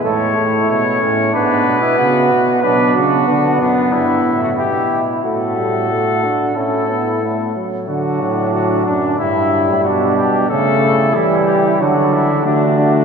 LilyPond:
<<
  \new Staff \with { instrumentName = "Trumpet" } { \time 4/4 \key e \mixolydian \tempo 4 = 92 cis''4 cis''4 b'2 | \key d \major b'8 fis'4 d'8 e'8. fis'16 g'8. r16 | a'2 a'4. r8 | fis'4 fis'8 d'8 e'4 fis'8 g'8 |
a'4 e'8 g'8 fis'8 e'8 d'8 d'8 | }
  \new Staff \with { instrumentName = "Flugelhorn" } { \time 4/4 \key e \mixolydian a'8 e'4 cis'8 d'8. e'16 fis'4 | \key d \major d'4 d'8. r16 e'4 e'4 | fis'2 e'4. r8 | d'2 e'4 d'4 |
cis'8 e'4. d'4 fis'4 | }
  \new Staff \with { instrumentName = "Trombone" } { \time 4/4 \key e \mixolydian a2 b2 | \key d \major fis4 b2~ b8 r8 | a8 g8 a8 d'8 cis'8 b8 a8 fis8 | fis2 g2 |
a4 g4 fis4 a4 | }
  \new Staff \with { instrumentName = "Euphonium" } { \clef bass \time 4/4 \key e \mixolydian a,8 a,8 b,8 a,8 gis,8 b,8 cis8 b,8 | \key d \major b,8 cis8 d8 fis,8 g,8 a,8 b,8 b,8 | a,4. r8 a,4. r8 | d8 a,4 fis,8 g,8. a,16 b,4 |
cis4 e4 d4 d4 | }
>>